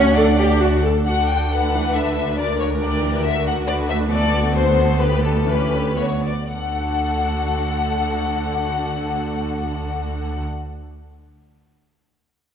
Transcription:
Already playing: D2 C#4 F#4 C#5 F#5
0.15 D4 A4 D5
0.39 G4
0.62 F#4
0.85 A4
1.06 D2 D3 D4 F#4 A4 F#5
1.30 G5
1.51 D3 A4 B4 F#5
1.74 E3
1.95 D3 A4 E5
2.39 D3 A#4 D5
2.60 C#5
2.81 D3 D4 G4 D5
3.03 E3
3.23 D3 F#4 E5
3.47 F#5
3.65 D2 D3 D4 B4 D5
3.89 E5
4.09 E3 B3 F#4 A4 D5
4.31 D3
4.54 A4 C5
4.99 D3 G4 B4
5.23 A4
5.47 E3 C#4 G4 B4
5.72 D3
5.98 D3 B3 F#4 B4 C#5
6.26 D5
6.51 D2 D3 D4 F#4 A4 F#5

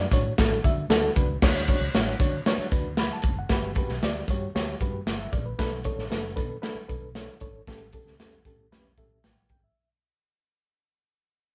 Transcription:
0.11 A2 D4 F#4 C#5, kick, closed hi-hat
0.38 A1 D4 F#4 A4, kick, snare, closed hi-hat
0.64 D3 D4 F#4 E5, kick, closed hi-hat
0.89 D2 D4 F#4 A4, snare, closed hi-hat
1.16 C#2 D4 F#4 B4, kick, closed hi-hat
1.42 D2 D4 F#4 C#5, kick, snare, crash
1.68 D4 F#4 C#5, kick, closed hi-hat
1.80 C#2
1.94 A1 D4 F#4 C#5, snare, closed hi-hat
2.19 D3 D4 F#4 C#5, kick, closed hi-hat
2.46 D4 F#4 C#5, snare, closed hi-hat
2.58 muted fingered electric bass stroke
2.71 D2 D4 F#4 B4, kick, closed hi-hat
2.97 B5, snare, closed hi-hat
3.13 A5
3.22 F#1, kick, closed hi-hat
3.39 F#5
3.49 G1 F#4 G4 B4, kick, snare, closed hi-hat
3.75 F#4 G4 B4, kick, closed hi-hat
3.89 B1, snare
4.02 D2 F#4 G4 D5, snare, closed hi-hat
4.28 G2 F#4 G4 C#5, kick, closed hi-hat
4.55 D2 F#4 G4 C#5, snare, closed hi-hat
4.80 G2 F#4 G4 B4, kick, closed hi-hat
5.06 G1 F#5, snare, closed hi-hat
5.19 E5
5.33 A#1 D5, kick, closed hi-hat
5.46 B4
5.59 B1 D4 A4 B4, kick, snare, closed hi-hat
5.84 D4 A4 C#5, kick, closed hi-hat
5.97 A1, snare
6.10 F#1 D4 A4 B4, snare, closed hi-hat
6.36 B2 D4 A4 B4, kick, closed hi-hat
6.62 D4 A4 B4, snare, closed hi-hat
6.75 muted fingered electric bass stroke
6.88 B1 D4 A4 B4, kick, closed hi-hat
7.15 D4 A4 C#5, snare, closed hi-hat
7.40 G#1 D4 A4 C#5, kick, closed hi-hat
7.67 A1 C#4 G4 A4, kick, snare, closed hi-hat
7.92 C#4 G4 A4, kick, closed hi-hat
8.06 C#2, snare
8.20 C#4 G4 A4, snare, closed hi-hat
8.45 A2 C#4 G4 A4, kick, closed hi-hat
8.71 E2 C#4 G4 B4, snare, closed hi-hat
8.97 A2 C#4 G4 A4 E5, kick, closed hi-hat
9.24 A1 F#5 G5, snare, closed hi-hat
9.49 G#1 G5, kick, closed hi-hat
9.64 E5

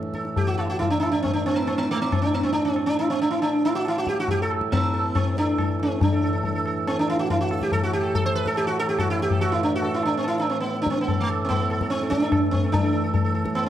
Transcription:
Already playing: A2 E3
0.03 tabla te
0.14 A4, tabla ke
0.25 tabla te
0.36 G4, tabla tin, tabla ge
0.47 F#4
0.58 E4, tabla na
0.70 F#4
0.79 E4, tabla tin, tabla ge
0.90 D4
1.00 E4, tabla na
1.12 D4
1.23 C4, tabla tin, tabla ge
1.33 D4
1.46 C4, tabla na
1.56 B3
1.67 C4, tabla na
1.75 B3 C4
1.91 A3
2.02 B3
2.12 C4, tabla na, tabla ge
2.22 D4
2.33 B3, tabla te
2.43 C4, tabla ge
2.53 D4, tabla tin
2.65 C4
2.76 tabla na
2.86 D4
2.98 E4, tabla tin
3.10 C4
3.20 D4, tabla na
3.31 E4
3.42 D4, tabla na
3.65 E4
3.75 F#4
3.85 E4, tabla na
3.98 F#4
4.07 G4, tabla ke
4.20 F#4
4.28 G4, tabla tin, tabla ge
4.42 A4
4.51 tabla na
4.61 tabla ke
4.72 B3 A4, tabla tin, tabla ge
4.93 A4, tabla na
5.15 C4 A4, tabla na, tabla ge
5.37 D4 A4, tabla te
5.58 A4, tabla na, tabla ge
5.80 C4, tabla te
6.01 A2 E3 D4, tabla tin, tabla ge
6.12 A4
6.23 A4
6.33 A4
6.43 A4, tabla tin, tabla ge
6.55 A4
6.66 A4, tabla na
6.87 C4, tabla na
6.99 D4
7.08 E4, tabla na
7.19 F#4
7.30 E4, tabla tin, tabla ge
7.41 F#4
7.51 A4, tabla na
7.61 G4, tabla ke
7.72 A4, tabla tin, tabla ge
7.83 F#4
7.93 G4, tabla na
8.03 A4
8.15 A4, tabla tin, tabla ge
8.26 C5
8.35 B4, tabla na
8.46 A4, tabla ke
8.56 G4, tabla na
8.67 F#4
8.79 A4
8.89 G4
8.99 F#4, tabla na, tabla ge
9.10 E4
9.20 G4, tabla te
9.30 A4, tabla ge
9.41 F#4, tabla tin
9.52 E4
9.63 D4
9.75 F#4
9.82 A4, tabla tin
9.94 E4
10.03 D4, tabla na
10.17 C4
10.24 E4, tabla na
10.40 D4
10.50 C4
10.60 B3
10.66 tabla te
10.77 tabla te
10.82 D4
10.87 C4, tabla ke
10.98 B3, tabla te
11.08 A4, tabla tin, tabla ge
11.20 A3
11.29 A4, tabla na
11.45 B3 C4
11.50 tabla tin, tabla ge
11.59 A4
11.70 A4, tabla na
11.81 A4, tabla ke
11.90 C4, tabla te
12.02 A4, tabla te
12.10 D4, tabla ke
12.22 A4, tabla te
12.32 A4, tabla na, tabla ge
12.51 C4, tabla ge
12.64 A4
12.71 A2 E3 D4, tabla tin, tabla ge
12.84 A4
12.92 A4
13.04 A4
13.13 A4, tabla tin, tabla ge
13.24 A4
13.34 A4, tabla na
13.44 A4, tabla ke
13.55 B3, tabla na

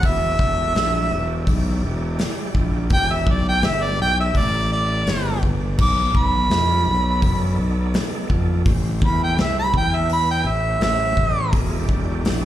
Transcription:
0.01 E1 G#3 E4 G4 D5, kick, open hi-hat
0.06 E5
0.39 E1, kick
0.75 A#1, snare, open hi-hat
1.11 E1
1.47 B1, kick, open hi-hat
1.82 E1
2.19 snare, open hi-hat
2.54 A#1, kick
2.89 E1 G#3 E4 G4 D5, kick, open hi-hat
2.94 G5
3.12 E5
3.26 B1, kick
3.31 D5
3.49 G5
3.62 G1 E5, snare, open hi-hat
3.84 D5
3.99 B1 G5
4.20 E5
4.34 A1 E4 A4 D5 E5, kick, open hi-hat
4.73 D5
5.06 G1 D4 G4 D5, snare, open hi-hat
5.43 kick
5.78 B1 B3 D#4 A4 D5 D6, kick, crash
6.14 B1, kick
6.18 B5
6.50 F2, snare, open hi-hat
6.86 B1
7.22 F#2, kick, open hi-hat
7.58 B1
7.94 snare, open hi-hat
8.30 F2, kick
8.66 A1 A3 C#4 G4 C5, kick, open hi-hat
9.02 E2 B5, kick
9.24 G5
9.37 C2, snare, open hi-hat
9.41 E5
9.59 B5
9.74 E2 B3 E4 B4 G5, kick
9.96 E5
10.10 B5, open hi-hat
10.31 G5
10.44 A1 A3 C#4 G4 C5 E5
10.80 A1 E5, snare, open hi-hat
11.17 A1, kick
11.53 E1 A3 F4 G#4 D#5, kick, open hi-hat
11.79 G#3 E4 G4 D5
11.89 E1, kick
12.24 A#1, snare, open hi-hat

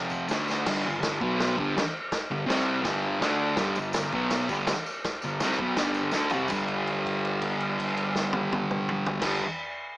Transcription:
Already playing: F2 C3 F3
0.02 tambourine
0.10 kick, tambourine
0.19 tambourine
0.29 D3 A3 D4, snare, tambourine, crash
0.48 snare, tambourine
0.57 tambourine
0.66 G2 D3 G3, kick, snare, crash
0.85 G2 D3
1.03 G2, snare, crash
1.07 D3
1.21 B2 F#3 B3, kick
1.40 snare, crash
1.57 G2 D3 G3, kick
1.78 snare, crash
2.12 kick, snare, crash
2.31 G2 D3
2.46 C3 G3 C4, snare, crash
2.82 G2 D3 G3, kick, snare, crash
3.20 D3 A3 D4, snare, crash
3.57 G2 D3 G3, kick, snare, tambourine, crash
3.75 G2 D3, tambourine
3.93 G2 D3, snare, tambourine, crash
4.12 B2 F#3 B3, kick, tambourine
4.30 snare, tambourine, crash
4.49 G2 D3 G3, kick, tambourine
4.67 snare, tambourine, crash
4.86 tambourine
5.04 kick, snare, tambourine, crash
5.22 G2 D3, tambourine
5.40 C3 G3, snare, tambourine, crash
5.44 C4
5.59 B2 F#3 B3, kick
5.76 G2 D3 G3, snare, tambourine, crash
5.94 tambourine
6.11 D3 A3 D4, snare, tambourine
6.30 C3 G3 C4, floor tom, tambourine
6.48 G2 D3 G3, kick, crash, tambourine
6.68 kick, crash
6.87 crash
7.06 kick, crash
7.25 crash
7.42 kick, crash
7.60 crash
7.79 kick, crash
7.97 crash
8.15 snare
8.33 high tom
8.53 high tom
8.71 mid tom
8.89 mid tom
9.06 floor tom
9.20 G2 D3, kick, snare, crash
9.25 G3

